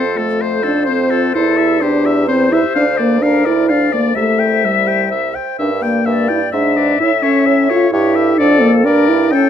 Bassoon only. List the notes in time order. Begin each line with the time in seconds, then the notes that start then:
Already playing: F2
1.36 E2
2.76 D2
4.16 C2
5.59 G2
6.06 G2
6.53 G#2
7.01 A2
7.46 A2
7.93 G2
8.40 F2
8.86 G2
9.33 A2